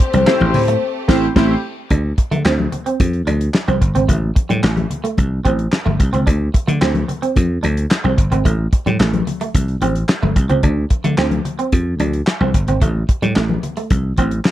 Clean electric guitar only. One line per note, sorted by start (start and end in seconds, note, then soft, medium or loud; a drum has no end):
0.14 0.25 G3 medium
0.28 0.38 A3 medium
0.55 muted clean electric guitar stroke soft
0.68 0.79 A3 medium
1.91 2.02 D4 medium
2.18 muted clean electric guitar stroke soft
2.31 2.43 A3 medium
2.45 2.56 C4 medium
2.72 muted clean electric guitar stroke soft
2.86 2.97 C4 medium
3.27 3.38 D4 medium
3.68 3.79 C4 medium
3.81 muted clean electric guitar stroke soft
3.95 4.06 C4 medium
4.08 4.20 A3 medium
4.36 muted clean electric guitar stroke soft
4.49 4.61 G3 medium
4.63 4.74 A3 medium
4.91 muted clean electric guitar stroke soft
5.04 5.15 A3 medium
5.45 5.56 C4 medium
5.86 5.97 A3 medium
5.99 muted clean electric guitar stroke soft
6.13 6.24 C4 medium
6.27 6.38 D4 medium
6.54 muted clean electric guitar stroke soft
6.67 6.79 A3 medium
6.81 6.92 C4 medium
7.08 muted clean electric guitar stroke soft
7.22 7.33 C4 medium
7.63 7.74 D4 medium
8.04 8.15 C4 medium
8.18 muted clean electric guitar stroke soft
8.32 8.43 C4 medium
8.45 8.56 A3 medium
8.73 muted clean electric guitar stroke soft
8.86 8.97 G3 medium
9.00 9.11 A3 medium
9.27 muted clean electric guitar stroke soft
9.41 9.52 A3 medium
9.82 9.93 C4 medium
10.23 10.34 A3 medium
10.36 muted clean electric guitar stroke soft
10.50 10.61 C4 medium
10.63 10.74 D4 medium
10.90 muted clean electric guitar stroke soft
11.04 11.15 A3 medium
11.18 11.29 C4 medium
11.45 muted clean electric guitar stroke soft
11.59 11.70 C4 medium
12.00 12.11 D4 medium
12.41 12.52 C4 medium
12.54 muted clean electric guitar stroke soft
12.68 12.79 C4 medium
12.82 12.93 A3 medium
13.09 muted clean electric guitar stroke soft
13.22 13.34 G3 medium
13.36 13.47 A3 medium
13.63 muted clean electric guitar stroke soft
13.77 13.88 A3 medium
14.18 14.29 C4 medium